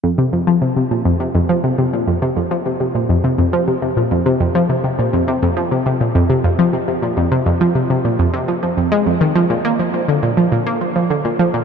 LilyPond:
\new Staff \with { instrumentName = "Synth arpeggio sound" } { \clef bass \time 4/4 \key bes \mixolydian \tempo 4 = 103 f,16 c16 f,16 f16 c16 c16 bes,16 f,16 c16 f,16 f16 c16 c16 bes,16 f,16 c16 | f,16 f16 c16 c16 bes,16 f,16 c16 f,16 f16 c16 c16 bes,16 f,16 c16 f,16 f16 | c16 c16 bes,16 f,16 c16 f,16 f16 c16 c16 bes,16 f,16 c16 f,16 f16 c16 c16 | bes,16 f,16 c16 f,16 f16 c16 c16 bes,16 f,16 c16 f16 f16 f,16 aes16 f,16 ees16 |
f16 bes,16 bes16 f16 f16 d16 bes,16 f16 bes,16 bes16 f16 f16 d16 bes,16 f16 bes,16 | }